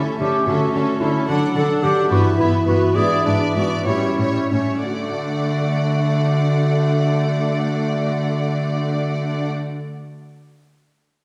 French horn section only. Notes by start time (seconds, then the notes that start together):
Already playing: A3 C#4
1.28 F#3 D4
2.11 E3 E4
2.95 D4
3.86 G3 C#4
4.84 A3 D4